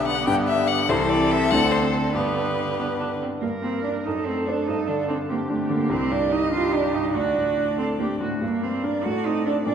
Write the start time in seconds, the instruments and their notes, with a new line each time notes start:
Already playing: grand piano B1 B3 D4 G4, cello D3, viola B3, violin G4
0.07 violin F#5
0.26 grand piano G2 B3 D4 G4, violin G5
0.47 violin E5
0.68 violin F#5
0.89 grand piano C2 C4 E4 A4, cello E3, viola C4, violin A4 C5
1.09 violin D5
1.31 violin E5
1.50 grand piano D2 C4 D4 A4, cello D3, violin F#5
1.71 violin C5
1.93 violin A4
2.13 grand piano G2, viola B3, violin G4 B4
2.79 viola B3, grand piano B3 D4 B4
3.00 viola D4
3.22 viola C4
3.41 grand piano G2, cello A#3, viola A#4
3.62 grand piano A#3, cello C4
3.83 cello D4, violin D5
3.87 grand piano D4 D5
4.04 grand piano F#2, cello D#4, viola A4
4.26 grand piano A3, cello C4
4.47 cello D4, grand piano D4 C5, violin D5
4.67 grand piano G2, cello D#4
4.87 grand piano D3, cello D4
5.08 cello C4, grand piano D4, violin D5
5.29 cello A#3, grand piano C4, viola G4
5.49 cello A3, grand piano D4
5.70 grand piano D3, cello A#3, violin D5
5.90 grand piano C2, cello C4, violin D#5
6.11 grand piano G2, cello D4
6.30 grand piano D#4, cello D#4
6.51 grand piano D4, cello F4, viola G4
6.71 cello D4, grand piano D#4
6.93 grand piano G2, cello D#4
7.13 grand piano D2, cello D4, viola F#4, violin D5
7.35 grand piano A2
7.57 grand piano D4
7.78 grand piano C4, cello C4, viola A4
7.99 cello A#3, grand piano D4, viola G4
8.21 grand piano A2, cello A3, viola F#4
8.40 grand piano G2, cello A#3, violin D5
8.62 grand piano A#3, cello C4
8.83 grand piano D4 A#4, cello D4
9.04 grand piano A2, cello F#4, viola A4
9.25 grand piano C4, cello D#4
9.45 cello D4, grand piano D4 A4
9.66 grand piano A#2, cello D4, viola D5